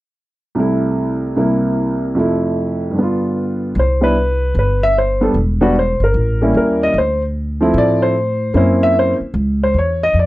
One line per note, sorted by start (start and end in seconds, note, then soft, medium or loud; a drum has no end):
0.55 1.35 C2 soft
0.55 1.35 C3 soft
0.55 1.37 A3 soft
0.60 1.37 E4 medium
1.36 2.16 C2 soft
1.36 2.15 C3 soft
1.36 2.17 A#3 soft
1.36 2.17 E4 medium
2.15 2.95 F2 soft
2.15 2.96 C3 soft
2.15 2.97 A3 soft
2.19 2.98 E4 medium
2.91 3.73 G2 soft
2.95 3.75 D3 soft
2.95 3.77 B3 soft
3.03 3.79 F4 soft
3.75 4.51 C2 medium
3.79 4.02 C5 medium
4.01 4.14 G3 soft
4.01 4.14 B3 soft
4.01 4.15 D4 soft
4.01 4.15 E4 medium
4.01 4.53 B4 medium
4.55 5.31 G1 medium
4.59 4.82 B4 medium
4.83 4.96 E5 medium
4.98 5.22 C5 medium
5.21 5.34 G3 medium
5.21 5.34 B3 soft
5.21 5.35 D4 soft
5.21 5.35 A4 medium
5.34 5.96 E1 medium
5.61 5.74 G3 medium
5.61 5.74 B3 medium
5.61 5.75 D4 medium
5.61 5.75 F#4 medium
5.79 6.02 C5 medium
6.00 6.13 G1 medium
6.00 6.53 A#4 medium
6.14 6.52 A1 medium
6.41 6.93 G3 medium
6.41 6.93 A#3 soft
6.41 6.93 C#4 soft
6.41 6.93 E4 medium
6.54 6.92 D#2 medium
6.54 6.81 A#4 medium
6.83 6.96 D#5 medium
6.94 7.70 D2 medium
6.98 7.21 C5 medium
7.61 8.12 F3 medium
7.61 8.12 A3 medium
7.61 8.13 C4 medium
7.61 8.13 E4 medium
7.74 8.50 A2 medium
7.78 8.01 D5 medium
8.02 8.52 C5 medium
8.54 9.16 F#2 medium
8.54 9.15 A#3 medium
8.54 9.15 C4 soft
8.54 9.15 C#4 soft
8.54 9.16 E4 medium
8.54 8.81 C5 medium
8.83 8.96 E5 medium
8.99 9.13 C5 medium
9.20 muted upright bass stroke soft
9.34 9.71 C#2 medium
9.63 9.76 C5 medium
9.74 10.11 E2 medium
9.78 10.01 C#5 medium
10.03 10.16 D#5 medium
10.14 10.26 F2 medium
10.19 10.26 D5 medium